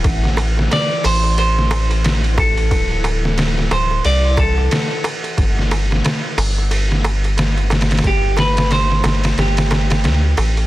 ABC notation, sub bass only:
X:1
M:4/4
L:1/8
Q:"Swing 16ths" 1/4=90
K:Ador
V:1 name="Sub bass" clef=bass
A,,,2 z A,,,4- A,,, | D,,,3 D,,, C,,2 z2 | G,,,2 z G,,,4- G,,, | G,,,3 G,,, G,,,2 D,, A,,, |]